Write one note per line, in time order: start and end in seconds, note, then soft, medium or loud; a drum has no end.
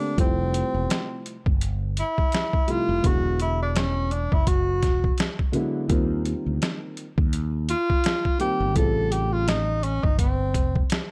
0.00 0.11 D3 medium
0.00 0.12 A3 medium
0.00 0.12 A#3 medium
0.00 0.12 C4 medium
0.00 0.19 D4 medium
0.00 0.13 G4 medium
0.16 0.62 F1 medium
0.16 1.32 C3 medium
0.16 1.32 F3 medium
0.16 1.32 G3 medium
0.16 1.33 A3 medium
0.16 1.22 C4 medium
0.16 1.33 E4 medium
0.16 kick loud
0.16 closed hi-hat medium
0.54 closed hi-hat medium
0.74 0.86 E1 loud
0.90 snare loud
0.90 closed hi-hat loud
1.26 closed hi-hat medium
1.46 2.01 G1 medium
1.46 kick loud
1.61 closed hi-hat loud
1.97 2.73 E4 loud
1.97 closed hi-hat medium
2.18 kick medium
2.32 snare medium
2.32 closed hi-hat medium
2.53 kick medium
2.67 2.97 C3 medium
2.67 2.97 F3 medium
2.67 2.98 G3 medium
2.67 2.98 A3 medium
2.67 2.98 E4 medium
2.67 closed hi-hat medium
2.71 3.08 F4 loud
2.89 3.00 F1 medium
3.02 4.28 E1 medium
3.02 4.18 D3 medium
3.02 4.18 F#3 medium
3.02 4.18 G#3 medium
3.02 4.19 B3 medium
3.02 4.19 E4 medium
3.02 3.41 F#4 loud
3.02 kick loud
3.02 closed hi-hat loud
3.40 3.60 E4 loud
3.40 closed hi-hat medium
3.62 3.79 D4 medium
3.76 4.14 C#4 medium
3.76 snare loud
3.76 closed hi-hat medium
4.11 4.35 D4 medium
4.11 closed hi-hat medium
4.32 4.83 F#1 medium
4.32 4.49 E4 medium
4.32 kick loud
4.47 5.18 F#4 loud
4.47 kick loud
4.47 closed hi-hat loud
4.83 5.10 E1 medium
4.83 kick medium
4.83 snare soft
4.83 closed hi-hat medium
5.04 kick medium
5.18 snare loud
5.18 closed hi-hat medium
5.39 kick medium
5.52 5.83 D3 loud
5.52 5.83 F#3 medium
5.52 5.84 G#3 medium
5.52 5.84 B3 medium
5.52 5.84 E4 loud
5.52 closed hi-hat medium
5.88 6.33 D#2 loud
5.88 7.03 D#3 loud
5.88 7.04 G3 medium
5.88 7.04 A#3 medium
5.88 7.04 C4 medium
5.88 7.05 F4 loud
5.88 kick loud
5.88 closed hi-hat medium
6.25 closed hi-hat medium
6.46 6.58 D2 medium
6.62 snare loud
6.62 closed hi-hat medium
6.97 closed hi-hat medium
7.18 7.73 D#2 medium
7.18 kick loud
7.33 closed hi-hat loud
7.69 8.37 F4 loud
7.69 closed hi-hat loud
7.90 kick medium
8.04 snare loud
8.04 closed hi-hat medium
8.25 kick medium
8.38 8.69 D#3 medium
8.38 8.69 G3 medium
8.38 8.69 A#3 medium
8.38 8.70 C4 medium
8.38 8.78 G4 loud
8.38 8.70 G4 medium
8.38 closed hi-hat medium
8.60 8.75 G1 loud
8.74 9.99 A1 loud
8.74 9.89 C#3 medium
8.74 9.89 G3 medium
8.74 9.90 A3 medium
8.74 9.90 C4 medium
8.74 9.90 F4 medium
8.74 9.13 A4 loud
8.74 kick loud
8.74 closed hi-hat medium
9.12 9.34 G4 loud
9.12 closed hi-hat medium
9.33 9.50 F4 loud
9.48 9.85 D#4 loud
9.48 snare loud
9.48 closed hi-hat medium
9.83 10.05 C#4 loud
9.83 closed hi-hat medium
10.03 10.54 G1 medium
10.03 10.19 D#4 medium
10.03 kick loud
10.18 10.86 C4 medium
10.18 kick loud
10.18 closed hi-hat loud
10.54 10.82 F1 loud
10.54 kick medium
10.54 closed hi-hat loud
10.75 kick medium
10.90 snare loud
10.90 closed hi-hat medium